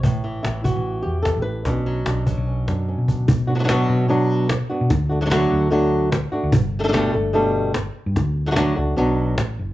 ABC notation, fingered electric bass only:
X:1
M:4/4
L:1/16
Q:1/4=148
K:Bm
V:1 name="Fingered electric bass" clef=bass
A,,,4 A,,,3 A,,,3 E,,3 A,,,3 | B,,,4 B,,,3 B,,,3 F,,3 B,,3 | B,,6 B,,8 z B,, | D,,6 D,,8 z D,, |
G,,,6 G,,,8 z G,, | D,,6 C,,2 B,,,4 A,,,2 F,,,2 |]